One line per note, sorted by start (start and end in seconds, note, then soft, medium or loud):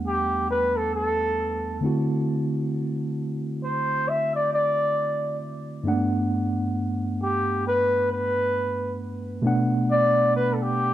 0.00 1.77 E2 medium
0.00 1.78 G3 medium
0.00 1.78 A3 medium
0.00 1.79 B3 medium
0.00 1.80 D4 medium
0.00 1.83 F#5 medium
0.07 0.47 G4 medium
0.50 0.78 B4 medium
0.77 0.94 A4 medium
0.95 1.80 A4 medium
1.81 5.36 D3 medium
1.81 5.37 A3 medium
1.81 5.37 C4 medium
1.81 5.38 E4 medium
1.86 5.38 F#4 medium
3.64 4.10 C5 medium
4.08 4.33 E5 loud
4.35 4.51 D5 medium
4.53 5.38 D5 medium
5.83 9.39 G2 medium
5.83 9.39 A3 medium
5.83 5.93 A#3 medium
5.83 9.41 D4 medium
5.88 9.41 F#5 medium
5.92 9.43 B3 medium
7.23 7.63 G4 medium
7.67 8.08 B4 loud
8.12 8.96 B4 medium
9.42 10.94 B2 medium
9.42 10.94 A3 medium
9.42 10.94 B3 medium
9.42 10.94 D4 medium
9.47 10.94 F#5 medium
9.91 10.32 D5 loud
10.36 10.54 B4 loud
10.53 10.64 A4 medium
10.62 10.94 G4 medium